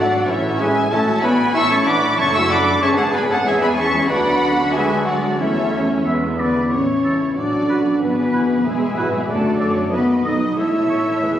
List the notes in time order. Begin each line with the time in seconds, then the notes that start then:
Already playing: G#1 F#3 D4 F#4 A4 D5 F#5
0.27 A1 E3 C#4 E4 A4 C#5 E5
0.59 G#3 C#4 E4 G#4 B4 E5 G#5
0.91 A1 A3 C#4 E4 F#4 A4 C#5 E5 A5
1.23 B3 C#4 E4 B4 D5 G#5 B5
1.54 A1 E3 C#4 E4 E5 A5 C#6 E6
1.70 A3 C#4 E4 C#5 E5 A5 C#6
1.86 E3 C#4 D4 D5 F#5 B5 D6
2.02 A3 E4
2.18 F#1 F#3 C#4 D4 A4 C#5 E5 A5 C#6
2.34 A3 E4 F#4 E5 G#5 C#6 E6
2.50 F#3 D4 D5 F#5 B5 D6
2.68 A3 F#4
2.81 G#1 B3 C#4 D4 G#4 C#5 E5 A5 C#6
2.97 G#3 A3 B3 A4 C#5 F#5 A5
3.13 B3 D4 B4 D5 G#5 B5
3.29 G#3 A3 B3 A4 C#5 F#5 A5
3.44 E2 E3 G#3 C#4 G#4 C#5 E5 G#5
3.60 G#3 B3 E4 B4 D5 G#5 B5
3.77 E3 C#4 C#5 E5 A5 C#6
3.94 G#3 E4
4.09 D2 F#3 B3 D4 F#4 B4 D5 F#5 B5
4.73 G#3 G#4 B4 E5 G#5
5.06 F#3 F#4 A4 D5 F#5
5.39 E2 E3 A3 C#4 E4 A4 C#5 E5
6.06 E2 G#3 B3 E5
6.39 D3 B3 B4 D5 B5
6.71 A1 E3 C#4 E4 C#5 C#6
7.05 C#2 E4 A4
7.37 A1 F#3 D4 F#4 A4 D5 D6
7.69 B1 F#4 B4
8.01 G#1 E3 B3 G#4 B4 B5
8.33 F#1 E4 B4
8.65 E1 B2 G#3 G#4 B4 E5 G#5
8.97 G#1 A2 F#3 E4 F#4 B4 F#5
9.13 B2 G#3 G#4 G#5
9.28 F#1 D3 A3 F#4 A4 D5 A5
9.60 F#2 A4 C#5 D5
9.92 F#1 D#3 B3 F#4 B4 D#5 B5
10.24 B1 F#3 D#4 A4 D#5 D#6
10.57 E1 A3 E4 A4 C#5 E5 E6
10.90 A1 A4 C#5
11.22 E1 G#4 B4